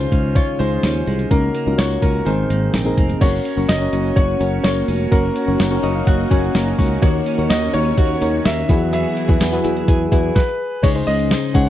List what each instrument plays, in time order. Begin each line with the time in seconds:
Already playing: synth keys C#3 C#4 D#4 F4 G#4, clean electric guitar D#3 G#3 F4, grand piano C5
0.12 fretless electric bass C#2, clean electric guitar C#4, kick, closed hi-hat
0.35 clean electric guitar F4, grand piano C#5, kick, closed hi-hat
0.59 fretless electric bass C#2, clean electric guitar G#3, synth keys C#4 D#4 F4 G#4, grand piano C5, closed hi-hat
0.83 fretless electric bass D#2, clean electric guitar C#4, snare, closed hi-hat, tambourine
1.07 fretless electric bass C2, clean electric guitar G#3, closed hi-hat
1.19 closed hi-hat
1.31 fretless electric bass C#2, synth keys C#3 C#4 D#4 F#4 A#4, clean electric guitar A#3, grand piano A#4, kick, closed hi-hat
1.55 clean electric guitar A#3, closed hi-hat
1.66 fretless electric bass C#2, synth keys C#4 D#4 F4 A#4
1.73 synth keys F#4
1.78 fretless electric bass C#2, clean electric guitar F#4, grand piano C#5, snare, closed hi-hat, tambourine
1.90 closed hi-hat
2.02 fretless electric bass C#2, clean electric guitar C#4, grand piano A#4, kick, closed hi-hat
2.26 fretless electric bass G#1, synth keys G#2 C4 D#4 G#4 A#4, clean electric guitar D#3, grand piano C5, closed hi-hat
2.50 fretless electric bass G#1, clean electric guitar A#3, closed hi-hat
2.74 fretless electric bass A#1, clean electric guitar C4, snare, closed hi-hat, tambourine
2.85 synth keys C4 D#4 G#4 A#4
2.98 fretless electric bass F1, clean electric guitar A#3, kick, closed hi-hat
3.10 closed hi-hat
3.21 fretless electric bass F#1, string machine A#3 C#4 F#4, clean electric guitar A#3 F#4, synth keys C#4 F#4 A#4 C#5, grand piano C#5, kick, closed hi-hat, crash
3.45 clean electric guitar C#4, closed hi-hat
3.57 fretless electric bass F#1, synth keys C#4 F#4 A#4 C#5
3.69 fretless electric bass F#1, clean electric guitar F#4, grand piano D#5, snare, closed hi-hat, tambourine
3.80 synth keys C#4 F#4 A#4 C#5
3.92 fretless electric bass F#1, synth keys C#4 F#4 A#4 C#5, clean electric guitar C#4, closed hi-hat
4.16 fretless electric bass F#1, clean electric guitar F#4, grand piano C#5, kick, closed hi-hat
4.40 fretless electric bass F#1, synth keys C#4 F#4 A#4 C#5, clean electric guitar C#4, closed hi-hat
4.64 fretless electric bass F#1, clean electric guitar A#3, grand piano C#5, snare, closed hi-hat, tambourine
4.88 fretless electric bass F1, clean electric guitar C#4, open hi-hat
5.11 fretless electric bass F#1, clean electric guitar A#3 F#4, synth keys C#4 F#4 A#4 C#5, string machine D#4, grand piano A#4, kick, closed hi-hat
5.36 clean electric guitar C#4, closed hi-hat
5.47 fretless electric bass F#1, synth keys C#4 F#4 A#4 C#5
5.60 fretless electric bass F#1, clean electric guitar F#4, snare, closed hi-hat, tambourine
5.71 synth keys C#4 F#4 A#4 C#5
5.83 fretless electric bass F#1, synth keys C#4 F#4 A#4 C#5 D#5, clean electric guitar C#4, closed hi-hat
5.95 synth keys F5
6.07 fretless electric bass F#1, clean electric guitar F#4, synth keys F#5, kick, closed hi-hat
6.30 fretless electric bass F#1, synth keys C#4 F#4 A#4 C#5 G#5, clean electric guitar C#4, kick, closed hi-hat
6.55 fretless electric bass F#1, clean electric guitar A#3, synth keys A#5, snare, closed hi-hat, tambourine
6.79 fretless electric bass C#2, clean electric guitar C#4, synth keys C#6, kick, open hi-hat
7.02 fretless electric bass D#2, synth keys D#3 D#4 F#4 A#4 C#5, string machine D#3 C#4, clean electric guitar A#3 F#4, grand piano C#5, kick, closed hi-hat
7.26 clean electric guitar C#4, closed hi-hat
7.38 fretless electric bass D#2, synth keys D#4 F#4 A#4 C#5
7.50 fretless electric bass D#2, clean electric guitar F#4, grand piano D#5, snare, closed hi-hat, tambourine
7.61 synth keys D#4 F#4 A#4 C#5
7.73 fretless electric bass D#2, clean electric guitar C#4, synth keys D#4 F#4 A#4 C#5, grand piano C#5, closed hi-hat
7.98 fretless electric bass D#2, clean electric guitar F#4, kick, closed hi-hat
8.21 fretless electric bass D#2, clean electric guitar C#4, synth keys D#4 F#4 A#4 C#5, closed hi-hat
8.45 fretless electric bass D#2, clean electric guitar A#3, grand piano E5, snare, closed hi-hat, tambourine
8.69 fretless electric bass E2, string machine E3 B3 F#4 G#4, synth keys E3 E4 F#4 G#4 B4, clean electric guitar F#3, kick, open hi-hat
8.93 clean electric guitar F#3 G#4, grand piano E5, closed hi-hat
9.17 clean electric guitar E4, closed hi-hat
9.28 fretless electric bass E2, synth keys E4 F#4 G#4 B4, kick
9.41 fretless electric bass E2, clean electric guitar G#4, snare, closed hi-hat, tambourine
9.52 synth keys E4 F#4 G#4 B4
9.64 fretless electric bass E2, synth keys E4 F#4 G#4 B4, clean electric guitar E4, closed hi-hat
9.77 closed hi-hat
9.88 fretless electric bass E2, clean electric guitar G#4, kick, closed hi-hat
10.11 fretless electric bass E2, synth keys E4 F#4 G#4 B4, clean electric guitar E4, kick, closed hi-hat
10.35 grand piano B4, kick, snare
10.83 fretless electric bass C#2, synth keys C#3 C#4 D#4 G#4 C#5, string machine C#3 C#4 D#4 G#4, clean electric guitar G#3, grand piano C#5, kick, closed hi-hat, crash
10.95 synth keys C#4 D#4 G#4 C5, closed hi-hat
11.07 fretless electric bass C#2, clean electric guitar G#3, grand piano D#5, closed hi-hat
11.19 closed hi-hat
11.31 clean electric guitar D#4, snare, closed hi-hat, tambourine
11.43 closed hi-hat
11.54 fretless electric bass C#2, synth keys C#4 D#4 G#4 C#5, clean electric guitar G#4, grand piano F#5, kick, closed hi-hat